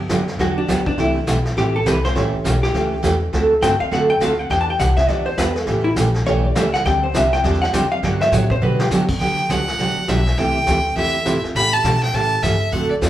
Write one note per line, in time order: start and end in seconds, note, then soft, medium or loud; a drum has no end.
0.09 0.38 F#2 medium
0.09 0.21 D3 medium
0.09 0.21 F#3 medium
0.09 0.21 B3 medium
0.09 0.21 D4 medium
0.09 0.21 G4 medium
0.09 kick soft
0.09 snare medium
0.09 hi-hat pedal medium
0.28 snare soft
0.39 0.67 E2 medium
0.39 0.59 D3 medium
0.39 0.59 F#3 medium
0.39 0.59 B3 medium
0.39 0.59 D4 medium
0.39 0.57 F#4 medium
0.39 0.59 G4 medium
0.39 brush sweep medium
0.39 kick soft
0.39 snare soft
0.58 0.68 D4 medium
0.68 0.97 D2 medium
0.68 0.79 D3 medium
0.68 0.79 F#3 medium
0.68 0.80 B3 loud
0.68 0.87 B3 medium
0.68 0.80 D4 medium
0.68 0.80 G4 medium
0.68 kick soft
0.68 snare medium
0.68 hi-hat pedal medium
0.86 0.98 D4 medium
0.86 kick medium
0.98 1.26 C2 medium
0.98 1.18 C3 medium
0.98 1.18 E3 medium
0.98 1.18 A3 medium
0.98 1.18 E4 medium
0.98 1.10 E4 medium
0.98 1.18 G4 medium
0.98 brush sweep soft
0.98 kick soft
0.98 snare soft
1.27 1.56 B1 medium
1.27 1.38 C3 medium
1.27 1.38 E3 medium
1.27 1.38 A3 medium
1.27 1.39 E4 medium
1.27 1.39 G4 medium
1.27 kick soft
1.27 snare medium
1.27 hi-hat pedal medium
1.45 snare soft
1.57 1.85 A1 medium
1.57 1.76 C3 medium
1.57 1.77 E3 medium
1.57 1.77 A3 medium
1.57 1.77 E4 medium
1.57 1.75 G4 medium
1.57 1.77 G4 medium
1.57 brush sweep soft
1.57 kick soft
1.57 snare soft
1.76 1.87 A4 medium
1.86 2.14 C2 loud
1.86 1.97 C3 medium
1.86 1.97 E3 medium
1.86 1.97 A3 medium
1.86 1.97 E4 medium
1.86 1.97 G4 medium
1.86 2.04 B4 medium
1.86 kick soft
1.86 snare medium
1.86 hi-hat pedal medium
2.04 2.17 C5 loud
2.04 snare soft
2.15 2.32 A1 medium
2.15 2.35 C#3 medium
2.15 2.35 E3 medium
2.15 2.35 A3 medium
2.15 2.35 C#4 medium
2.15 2.36 G4 medium
2.15 2.63 C#5 medium
2.15 brush sweep medium
2.15 kick soft
2.15 snare medium
2.34 muted upright bass stroke soft
2.44 2.73 B1 loud
2.44 2.56 C#3 medium
2.44 2.56 E3 medium
2.44 2.56 A3 medium
2.44 2.56 C#4 medium
2.44 2.56 G4 medium
2.44 kick soft
2.44 snare medium
2.44 hi-hat pedal medium
2.63 3.01 G4 medium
2.63 snare soft
2.74 2.94 C#3 medium
2.74 2.94 E3 medium
2.74 2.94 A3 medium
2.74 2.94 C#4 medium
2.74 2.95 G4 medium
2.74 brush sweep medium
2.74 kick soft
2.74 snare soft
3.03 3.32 E2 medium
3.03 3.14 C#3 medium
3.03 3.14 E3 medium
3.03 3.14 A3 medium
3.03 3.15 C#4 medium
3.03 3.15 G4 medium
3.03 kick soft
3.03 snare medium
3.03 hi-hat pedal medium
3.33 3.61 D2 medium
3.33 3.53 D3 medium
3.33 3.53 A3 medium
3.33 3.53 C4 medium
3.33 3.53 F#4 medium
3.33 3.53 A4 medium
3.33 brush sweep soft
3.33 kick soft
3.33 snare soft
3.62 3.79 G2 medium
3.62 3.73 D3 medium
3.62 3.73 A3 medium
3.62 3.73 C4 medium
3.62 3.73 F#4 medium
3.62 3.74 A4 medium
3.62 3.80 G5 loud
3.62 kick soft
3.62 snare medium
3.62 hi-hat pedal medium
3.80 3.91 F5 loud
3.80 muted upright bass stroke soft
3.91 4.20 F#2 medium
3.91 4.11 D3 medium
3.91 4.11 A3 medium
3.91 4.12 C4 medium
3.91 4.12 F#4 medium
3.91 4.12 A4 medium
3.91 4.09 F#5 medium
3.91 brush sweep medium
3.91 kick soft
3.91 snare soft
4.10 4.21 G5 loud
4.20 4.49 D2 medium
4.20 4.32 D3 medium
4.20 4.32 A3 medium
4.20 4.32 C4 medium
4.20 4.32 F#4 medium
4.20 4.32 A4 loud
4.20 4.39 F5 medium
4.20 kick soft
4.20 snare medium
4.20 hi-hat pedal medium
4.39 4.50 F#5 medium
4.50 4.79 E2 medium
4.50 4.70 E3 medium
4.50 4.70 B3 medium
4.50 4.70 D4 medium
4.50 4.70 G4 medium
4.50 4.60 G5 loud
4.50 brush sweep soft
4.50 kick soft
4.50 snare soft
4.61 4.70 A5 loud
4.70 4.79 G5 medium
4.79 5.08 C2 loud
4.79 4.90 E3 medium
4.79 4.91 B3 medium
4.79 4.91 D4 medium
4.79 4.91 G4 medium
4.79 4.97 F#5 medium
4.79 kick soft
4.79 snare medium
4.79 hi-hat pedal medium
4.97 5.09 E5 loud
4.97 kick medium
4.97 snare soft
5.08 5.37 D2 medium
5.08 5.29 E3 medium
5.08 5.29 B3 medium
5.08 5.29 D4 medium
5.08 5.29 G4 medium
5.08 5.25 D5 medium
5.08 brush sweep soft
5.08 kick soft
5.08 snare soft
5.26 5.37 C5 medium
5.38 5.66 E2 medium
5.38 5.49 E3 medium
5.38 5.49 B3 medium
5.38 5.49 D4 medium
5.38 5.50 G4 medium
5.38 5.55 B4 medium
5.38 kick soft
5.38 snare medium
5.38 hi-hat pedal medium
5.55 5.68 A4 loud
5.55 snare soft
5.67 5.96 A1 medium
5.67 5.87 C#3 medium
5.67 5.87 E3 medium
5.67 5.87 A3 medium
5.67 5.87 C#4 medium
5.67 5.85 G4 medium
5.67 5.88 G4 medium
5.67 brush sweep medium
5.67 kick soft
5.67 snare medium
5.84 5.92 E4 medium
5.96 6.25 A#1 loud
5.96 6.08 C#3 medium
5.96 6.08 E3 medium
5.96 6.08 A3 medium
5.96 6.08 C#4 medium
5.96 6.08 G4 medium
5.96 kick soft
5.96 snare medium
5.96 hi-hat pedal medium
6.14 snare soft
6.26 6.55 B1 medium
6.26 6.46 C#3 medium
6.26 6.46 E3 medium
6.26 6.46 A3 medium
6.26 6.46 C#4 medium
6.26 6.46 G4 medium
6.26 6.44 C#5 loud
6.26 brush sweep soft
6.26 kick soft
6.26 snare soft
6.44 6.57 D5 loud
6.55 6.84 C#2 loud
6.55 6.67 C#3 medium
6.55 6.67 E3 medium
6.55 6.67 A3 medium
6.55 6.67 C#4 medium
6.55 6.67 G4 loud
6.55 6.74 E5 medium
6.55 kick soft
6.55 snare medium
6.55 hi-hat pedal medium
6.74 6.85 F#5 loud
6.74 snare soft
6.85 7.14 D2 loud
6.85 7.05 D3 medium
6.85 7.05 G3 medium
6.85 7.05 C4 medium
6.85 7.05 D4 medium
6.85 7.05 G4 medium
6.85 7.03 G5 loud
6.85 brush sweep medium
6.85 kick soft
6.85 snare medium
7.04 7.14 C5 medium
7.14 7.43 C2 medium
7.14 7.25 D3 medium
7.14 7.25 G3 medium
7.14 7.26 C4 medium
7.14 7.26 D4 medium
7.14 7.26 G4 medium
7.14 7.33 E5 medium
7.14 kick soft
7.14 snare medium
7.14 hi-hat pedal medium
7.33 7.45 G5 loud
7.33 snare soft
7.44 7.72 E2 medium
7.44 7.64 D3 medium
7.44 7.64 G3 medium
7.44 7.64 C4 medium
7.44 7.64 D4 medium
7.44 7.64 G4 medium
7.44 7.61 A5 loud
7.44 brush sweep medium
7.44 kick soft
7.44 snare soft
7.53 snare soft
7.62 7.74 F#5 loud
7.62 snare medium
7.73 8.02 F#2 medium
7.73 7.84 D3 medium
7.73 7.85 G3 medium
7.73 7.85 C4 medium
7.73 7.85 D4 medium
7.73 7.85 G4 medium
7.73 7.91 G5 loud
7.73 kick soft
7.73 snare medium
7.73 hi-hat pedal medium
7.92 8.05 F5 loud
8.03 8.31 G2 medium
8.03 8.22 D3 medium
8.03 8.23 F#3 medium
8.03 8.23 B3 medium
8.03 8.23 D4 medium
8.03 8.23 G4 medium
8.03 8.21 F#5 loud
8.03 brush sweep soft
8.03 kick soft
8.03 snare soft
8.21 8.35 E5 loud
8.21 snare medium
8.32 8.60 A2 loud
8.32 8.43 D3 medium
8.32 8.43 F#3 medium
8.32 8.43 B3 medium
8.32 8.43 D4 medium
8.32 8.44 G4 medium
8.32 8.51 C#5 loud
8.32 kick soft
8.32 snare medium
8.32 hi-hat pedal medium
8.50 8.62 C5 loud
8.50 kick medium
8.61 8.89 B2 medium
8.61 8.81 D3 medium
8.61 8.81 F#3 medium
8.61 8.81 B3 medium
8.61 8.81 D4 medium
8.61 8.82 G4 medium
8.61 8.80 B4 loud
8.79 8.87 G4 loud
8.79 snare medium
8.90 9.19 F#2 loud
8.90 9.02 D3 medium
8.90 9.02 F#3 medium
8.90 9.02 B3 medium
8.90 9.02 D4 loud
8.90 9.03 G4 medium
8.90 snare medium
8.90 hi-hat pedal medium
9.09 kick medium
9.09 crash medium
9.20 9.49 D2 medium
9.20 9.40 D3 medium
9.20 9.40 F#3 medium
9.20 9.40 B3 medium
9.20 9.40 D4 medium
9.20 9.40 G4 medium
9.20 9.52 G5 medium
9.20 brush sweep soft
9.20 kick soft
9.20 snare soft
9.49 9.78 C#2 medium
9.49 9.60 D3 medium
9.49 9.60 F#3 medium
9.49 9.61 B3 medium
9.49 9.61 D4 medium
9.49 9.61 G4 medium
9.49 10.11 F#5 medium
9.49 kick soft
9.49 snare medium
9.49 hi-hat pedal soft
9.67 snare soft
9.79 9.95 C2 medium
9.79 9.99 D3 medium
9.79 9.99 F#3 medium
9.79 9.99 B3 medium
9.79 9.99 D4 medium
9.79 9.99 G4 medium
9.79 brush sweep soft
9.79 kick soft
9.79 snare soft
9.96 muted upright bass stroke soft
10.08 10.37 B1 loud
10.08 10.19 D3 medium
10.08 10.19 F#3 medium
10.08 10.19 B3 medium
10.08 10.20 D4 medium
10.08 10.20 G4 medium
10.08 10.39 E5 medium
10.08 kick soft
10.08 snare medium
10.08 hi-hat pedal soft
10.26 snare soft
10.37 10.66 C2 medium
10.37 10.57 C3 medium
10.37 10.58 E3 medium
10.37 10.58 A3 medium
10.37 10.58 E4 medium
10.37 10.58 G4 medium
10.37 10.96 G5 loud
10.37 brush sweep soft
10.37 kick soft
10.37 snare soft
10.66 10.95 D2 loud
10.66 10.78 C3 medium
10.66 10.78 E3 medium
10.66 10.78 A3 medium
10.66 10.78 E4 medium
10.66 10.78 G4 medium
10.66 kick soft
10.66 snare medium
10.66 hi-hat pedal soft
10.96 11.25 E2 medium
10.96 11.16 C3 medium
10.96 11.16 E3 medium
10.96 11.16 A3 medium
10.96 11.16 E4 medium
10.96 11.17 G4 medium
10.96 11.41 E5 loud
10.96 brush sweep soft
10.96 kick soft
10.96 snare soft
11.25 11.42 G2 medium
11.25 11.37 C3 medium
11.25 11.37 E3 medium
11.25 11.37 A3 medium
11.25 11.37 E4 medium
11.25 11.37 G4 medium
11.25 kick soft
11.25 snare medium
11.25 hi-hat pedal medium
11.44 muted upright bass stroke soft
11.44 snare soft
11.55 11.83 A2 medium
11.55 11.75 C#3 medium
11.55 11.75 E3 medium
11.55 11.75 A3 medium
11.55 11.75 C#4 medium
11.55 11.76 G4 medium
11.55 11.75 B5 loud
11.55 brush sweep soft
11.55 kick soft
11.55 snare soft
11.73 12.03 A5 loud
11.84 12.13 B2 medium
11.84 11.95 C#3 medium
11.84 11.95 E3 medium
11.84 11.96 A3 medium
11.84 11.96 C#4 medium
11.84 11.96 G4 medium
11.84 kick soft
11.84 snare medium
11.84 hi-hat pedal medium
12.02 12.16 G5 loud
12.02 snare soft
12.13 12.42 A2 medium
12.13 12.33 C#3 medium
12.13 12.34 E3 medium
12.13 12.34 A3 medium
12.13 12.34 C#4 medium
12.13 12.34 G4 medium
12.13 12.45 A5 loud
12.13 brush sweep medium
12.13 kick soft
12.13 snare soft
12.43 12.71 G2 medium
12.43 12.54 C#3 medium
12.43 12.54 E3 medium
12.43 12.54 A3 medium
12.43 12.54 C#4 medium
12.43 12.54 G4 medium
12.43 12.74 E5 medium
12.43 kick soft
12.43 snare medium
12.43 hi-hat pedal medium
12.72 12.89 F#2 medium
12.72 12.92 D3 medium
12.72 12.92 A3 medium
12.72 12.92 C4 medium
12.72 12.93 F#4 medium
12.72 12.93 A4 medium
12.72 12.89 F#5 medium
12.72 brush sweep soft
12.72 kick soft
12.72 snare soft
12.90 12.95 D5 medium
12.90 muted upright bass stroke soft
13.01 13.10 E2 medium
13.01 13.10 D3 medium
13.01 13.10 A3 medium
13.01 13.10 C4 medium
13.01 13.10 F#4 medium
13.01 13.10 A4 medium
13.01 13.10 D5 medium
13.01 kick soft
13.01 snare medium
13.01 hi-hat pedal medium